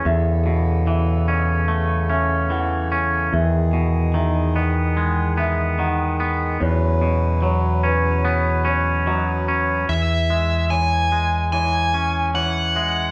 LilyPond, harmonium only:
\new Staff \with { instrumentName = "Harmonium" } { \time 4/4 \key cis \minor \tempo 4 = 73 <cis b a'>1 | <dis gis'>1 | <fis cis' b'>1 | r1 | }